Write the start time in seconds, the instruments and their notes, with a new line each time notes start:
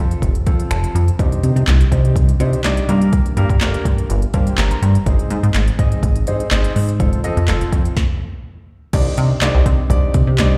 Already playing: grand piano C4 F4 A4 C5
0.00 analog synth bass F2
0.11 closed hi-hat
0.22 analog synth bass F1, kick, closed hi-hat
0.35 closed hi-hat
0.46 analog synth bass F2, grand piano C4 F4 A4 C5, kick, closed hi-hat
0.60 closed hi-hat
0.71 analog synth bass F1, grand piano A5, finger snap, closed hi-hat
0.84 closed hi-hat
0.95 analog synth bass F2, closed hi-hat
1.08 closed hi-hat
1.19 analog synth bass C2, grand piano D4 D#4 G4 C5, kick, closed hi-hat
1.32 closed hi-hat
1.43 analog synth bass C3, closed hi-hat
1.56 analog synth bass C3, closed hi-hat
1.68 analog synth bass C2, snare, clap, closed hi-hat
1.81 closed hi-hat
1.91 analog synth bass C3, grand piano D4 D#4 G4 C5, kick, closed hi-hat
2.05 closed hi-hat
2.16 analog synth bass C2, kick, closed hi-hat
2.29 closed hi-hat
2.40 analog synth bass C3, grand piano D4 D#4 G4 C5, closed hi-hat
2.53 closed hi-hat
2.64 analog synth bass C2, grand piano D4 D#4 G4 D5, snare, clap, closed hi-hat
2.77 closed hi-hat
2.88 analog synth bass G2, grand piano A#3 D4 G4 A#4, closed hi-hat
3.02 closed hi-hat
3.13 kick, closed hi-hat
3.26 closed hi-hat
3.37 analog synth bass G2, grand piano A#3 D4 G4 A#4, closed hi-hat
3.50 analog synth bass G2, kick, closed hi-hat
3.61 analog synth bass G1, grand piano A#3 D4 G4 A#4, snare, clap, closed hi-hat
3.74 closed hi-hat
3.85 analog synth bass G2, kick, closed hi-hat
3.98 closed hi-hat
4.10 analog synth bass G1, closed hi-hat
4.22 closed hi-hat
4.34 analog synth bass G2, grand piano A#3 D4 G4 C5 F5, kick, closed hi-hat
4.42 grand piano G5
4.47 closed hi-hat
4.58 analog synth bass G1, grand piano A#5, snare, clap, closed hi-hat
4.71 grand piano A#5, closed hi-hat
4.82 analog synth bass G2, closed hi-hat
4.95 closed hi-hat
5.06 analog synth bass G#1, grand piano C4 D#4 G#4 C5, kick, closed hi-hat
5.19 closed hi-hat
5.30 analog synth bass G#2, closed hi-hat
5.43 analog synth bass G#2, closed hi-hat
5.54 analog synth bass G#1, snare, clap, closed hi-hat
5.68 closed hi-hat
5.79 analog synth bass G#2, grand piano C4 D#4 G#4 D#5, kick, closed hi-hat
5.92 closed hi-hat
6.03 analog synth bass G#1, kick, closed hi-hat
6.16 closed hi-hat
6.27 analog synth bass G#2, grand piano C4 D#4 G#4 C5, closed hi-hat
6.40 closed hi-hat
6.51 analog synth bass G#1, grand piano C4 D#4 G#4 C5, snare, clap, closed hi-hat
6.64 closed hi-hat
6.76 analog synth bass G#2, open hi-hat
6.89 closed hi-hat
7.00 analog synth bass F1, grand piano C4 F4 A4 C5, kick, closed hi-hat
7.13 closed hi-hat
7.24 analog synth bass F2, grand piano C4 F4 A4 D#5, closed hi-hat
7.37 analog synth bass F2, closed hi-hat
7.48 analog synth bass F1, grand piano C4 F4 A4 C5, snare, clap, closed hi-hat
7.61 closed hi-hat
7.72 analog synth bass F2, kick, closed hi-hat
7.85 closed hi-hat
7.97 kick, snare
8.93 analog synth bass C2, grand piano D4 D#4 G4 C5 D5, kick, closed hi-hat, crash
9.17 analog synth bass C3, closed hi-hat
9.42 analog synth bass C2, grand piano D4 D#4 G4 C5 D5, snare, clap, closed hi-hat
9.55 analog synth bass C2
9.66 analog synth bass C3, kick, closed hi-hat
9.90 analog synth bass C2, grand piano D4 D#4 G4 C5 D5, kick, closed hi-hat
10.14 analog synth bass C3, kick, closed hi-hat
10.27 analog synth bass C3
10.38 analog synth bass C2, grand piano D4 D#4 G4 C5 D5, snare, clap, closed hi-hat